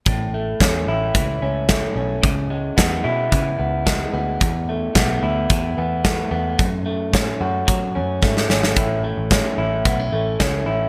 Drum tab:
HH |x---x---x---x---|x---x---x---x---|x---x---x---x---|x---x---x-------|
SD |----o-------o---|----o-------o---|----o-------o---|----o-------oooo|
BD |o---o---o---o---|o---o---o---o---|o---o---o---o---|o---o---o---o---|

HH |x---x---x---x---|
SD |----o-------o---|
BD |o---o---o---o---|